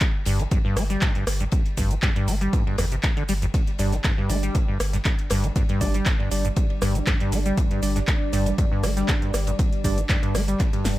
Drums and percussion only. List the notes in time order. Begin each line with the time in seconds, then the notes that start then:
0.00 kick, snare, clap, closed hi-hat, ride, cabasa
0.25 open hi-hat, ride, cabasa
0.39 closed hi-hat, ride, cabasa
0.51 kick, closed hi-hat, ride, cabasa
0.77 cross-stick, open hi-hat, ride, cabasa
0.90 snare, closed hi-hat, cabasa
1.01 kick, snare, clap, closed hi-hat, ride, cabasa
1.15 closed hi-hat
1.27 cross-stick, open hi-hat, ride, cabasa
1.40 closed hi-hat, ride, cabasa
1.52 kick, closed hi-hat, ride, cabasa
1.66 closed hi-hat
1.77 kick, open hi-hat, ride, cabasa
1.91 closed hi-hat, ride, cabasa
2.02 kick, snare, clap, closed hi-hat, ride, cabasa
2.16 closed hi-hat, ride
2.28 open hi-hat, ride, cabasa
2.41 closed hi-hat, cabasa
2.53 kick, closed hi-hat, ride, cabasa
2.67 ride
2.78 cross-stick, open hi-hat, ride, cabasa
2.92 closed hi-hat, cabasa
3.03 kick, snare, clap, closed hi-hat, ride, cabasa
3.17 closed hi-hat
3.29 open hi-hat, ride, cabasa
3.42 closed hi-hat, ride, cabasa
3.54 kick, closed hi-hat, ride, cabasa
3.67 closed hi-hat
3.79 open hi-hat, ride, cabasa
3.92 snare, closed hi-hat, cabasa
4.04 kick, snare, clap, closed hi-hat, ride, cabasa
4.29 open hi-hat, ride, cabasa
4.43 closed hi-hat, ride, cabasa
4.55 kick, closed hi-hat, ride, cabasa
4.80 cross-stick, open hi-hat, ride, cabasa
4.93 snare, closed hi-hat, cabasa
5.05 kick, snare, clap, closed hi-hat, ride, cabasa
5.19 closed hi-hat
5.30 cross-stick, open hi-hat, ride, cabasa
5.44 closed hi-hat, ride, cabasa
5.56 kick, closed hi-hat, ride, cabasa
5.69 closed hi-hat
5.81 kick, open hi-hat, ride, cabasa
5.94 closed hi-hat, ride, cabasa
6.06 kick, snare, clap, closed hi-hat, ride, cabasa
6.20 ride
6.31 open hi-hat, ride, cabasa
6.45 closed hi-hat, cabasa
6.56 kick, closed hi-hat, ride, cabasa
6.70 ride
6.82 cross-stick, open hi-hat, ride, cabasa
6.95 closed hi-hat, cabasa
7.07 kick, snare, clap, closed hi-hat, ride, cabasa
7.20 closed hi-hat
7.32 open hi-hat, ride, cabasa
7.46 closed hi-hat, ride, cabasa
7.57 kick, closed hi-hat, ride, cabasa
7.71 closed hi-hat
7.82 open hi-hat, ride, cabasa
7.96 snare, closed hi-hat, cabasa
8.07 kick, snare, clap, closed hi-hat, ride, cabasa
8.33 open hi-hat, ride, cabasa
8.46 closed hi-hat, ride, cabasa
8.58 kick, closed hi-hat, ride, cabasa
8.84 cross-stick, open hi-hat, ride, cabasa
8.97 snare, closed hi-hat, cabasa
9.08 kick, snare, clap, closed hi-hat, ride, cabasa
9.22 closed hi-hat
9.34 cross-stick, open hi-hat, ride, cabasa
9.47 closed hi-hat, ride, cabasa
9.59 kick, closed hi-hat, ride, cabasa
9.72 closed hi-hat
9.84 kick, open hi-hat, ride, cabasa
9.98 closed hi-hat, ride, cabasa
10.09 kick, snare, clap, closed hi-hat, ride, cabasa
10.23 closed hi-hat, ride
10.35 cross-stick, open hi-hat, ride, cabasa
10.48 closed hi-hat, cabasa
10.60 kick, clap, closed hi-hat, ride, cabasa
10.73 closed hi-hat, ride
10.84 snare, open hi-hat, ride, cabasa